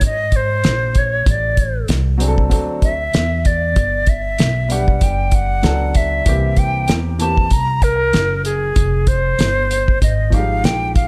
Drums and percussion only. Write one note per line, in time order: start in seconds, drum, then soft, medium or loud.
0.01 kick medium
0.01 closed hi-hat medium
0.32 kick medium
0.32 closed hi-hat medium
0.64 snare loud
0.64 closed hi-hat medium
0.95 kick medium
0.95 closed hi-hat medium
1.26 kick loud
1.26 closed hi-hat medium
1.57 kick medium
1.57 closed hi-hat medium
1.88 snare loud
1.88 closed hi-hat medium
2.20 closed hi-hat medium
2.38 kick medium
2.51 kick medium
2.51 closed hi-hat medium
2.82 kick medium
2.82 closed hi-hat medium
3.14 snare loud
3.14 closed hi-hat medium
3.45 kick medium
3.45 closed hi-hat medium
3.76 kick loud
3.76 closed hi-hat medium
4.06 kick medium
4.06 closed hi-hat medium
4.38 snare loud
4.38 closed hi-hat medium
4.70 closed hi-hat medium
4.88 kick medium
5.01 kick medium
5.01 closed hi-hat medium
5.31 kick medium
5.31 closed hi-hat medium
5.63 snare loud
5.63 closed hi-hat medium
5.95 kick medium
5.95 closed hi-hat medium
6.26 kick loud
6.26 closed hi-hat medium
6.56 kick medium
6.56 closed hi-hat medium
6.88 snare loud
6.88 closed hi-hat medium
7.20 closed hi-hat medium
7.37 kick medium
7.51 kick medium
7.51 closed hi-hat loud
7.82 kick medium
7.82 closed hi-hat medium
8.13 snare medium
8.13 closed hi-hat medium
8.45 closed hi-hat medium
8.76 kick loud
8.76 closed hi-hat medium
9.07 kick medium
9.07 closed hi-hat medium
9.39 snare loud
9.39 closed hi-hat medium
9.71 closed hi-hat medium
9.88 kick medium
10.02 kick medium
10.02 closed hi-hat medium
10.32 kick medium
10.32 closed hi-hat medium
10.64 snare loud
10.64 closed hi-hat medium
10.96 kick medium
10.96 closed hi-hat medium